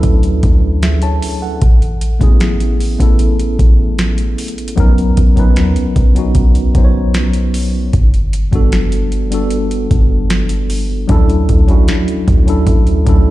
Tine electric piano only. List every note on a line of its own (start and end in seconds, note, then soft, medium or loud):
0.00 1.64 F#3 loud
0.00 1.64 C#4 loud
0.00 1.64 D4 loud
0.00 1.64 E4 loud
0.00 1.43 A4 loud
0.00 1.63 B4 loud
0.83 1.02 G#4 medium
0.83 1.01 E5 medium
1.03 1.40 C#5 medium
1.03 1.40 A5 medium
1.42 1.80 A4 medium
1.42 1.80 F#5 medium
2.19 2.93 A3 medium
2.19 2.94 B3 medium
2.19 2.94 C#4 medium
2.19 2.95 E4 medium
2.19 2.95 G#4 loud
2.99 4.45 A3 medium
2.99 4.46 B3 medium
2.99 4.46 C#4 medium
2.99 4.47 E4 medium
2.99 4.47 A4 loud
4.76 5.31 F#3 loud
4.76 5.32 B3 loud
4.76 5.32 C#4 loud
4.76 5.33 D#4 loud
4.80 5.33 A#4 loud
5.35 6.09 F#3 medium
5.35 6.09 B3 medium
5.35 6.10 C#4 medium
5.35 6.10 D#4 medium
5.39 6.11 B4 loud
6.15 6.70 F#3 medium
6.15 6.70 B3 medium
6.15 6.71 C#4 medium
6.15 6.71 D#4 medium
6.19 6.72 F#4 medium
6.74 7.93 F#3 medium
6.74 7.93 B3 medium
6.74 7.94 C#4 medium
6.74 7.94 D#4 medium
6.74 6.83 C5 medium
6.84 7.98 C#5 medium
8.51 9.25 G3 medium
8.51 9.25 B3 medium
8.51 9.26 D4 medium
8.51 9.26 F#4 medium
8.56 9.27 A4 loud
9.30 10.77 G3 medium
9.30 10.77 B3 medium
9.30 10.78 D4 medium
9.30 10.78 F#4 medium
9.30 10.79 A4 medium
11.08 11.63 F#3 loud
11.08 11.63 C#4 loud
11.08 11.64 D4 loud
11.08 11.64 E4 loud
11.08 11.65 A4 loud
11.67 12.40 F#3 medium
11.67 12.41 C#4 medium
11.67 12.41 D4 medium
11.67 12.42 E4 medium
11.71 12.43 F#4 loud
12.46 13.01 F#3 medium
12.46 13.02 C#4 medium
12.46 13.02 D4 medium
12.46 13.03 E4 medium
12.50 13.03 A4 loud
13.05 13.31 F#3 medium
13.05 13.31 C#4 medium
13.05 13.31 D4 medium
13.05 13.31 E4 medium
13.09 13.31 A4 medium